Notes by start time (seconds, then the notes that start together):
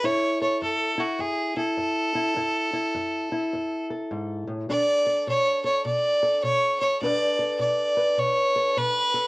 0.03 F#2 E4 A4 C#5
0.41 A4 C#5
0.62 F#2 A4
0.98 E4 F#4
1.19 F#2 G#4
1.57 E4 A4
1.77 F#2
2.15 E4
2.36 F#2 E4
2.73 E4
2.95 F#2
3.32 E4
3.53 F#2
3.90 A4
4.11 G#2
4.47 A2
4.69 B2 D4 A4 D5
5.06 A4
5.27 B2 C#5
5.64 A4 C#5
5.85 B2 D5
6.23 A4
6.43 B2 C#5
6.80 A4 C#5
7.02 B2 D4 A4 B4 D5
7.39 A4
7.59 B2 D5
7.97 B4
8.18 B2 C#5
8.56 A4
8.77 B2 B4
9.14 A4